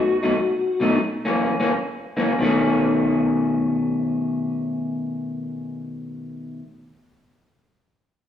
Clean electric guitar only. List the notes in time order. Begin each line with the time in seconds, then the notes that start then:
0.23 B2 F#3 A3 D#4
0.35 muted clean electric guitar stroke
0.80 B2 F#3 A3 D#4
1.25 F#2 E3 A#3 C#4
1.60 F#2 E3 A#3 C#4
1.72 muted clean electric guitar stroke
2.17 F#2 E3 A#3 C#4
2.39 B2 D#3 A3
2.43 C#4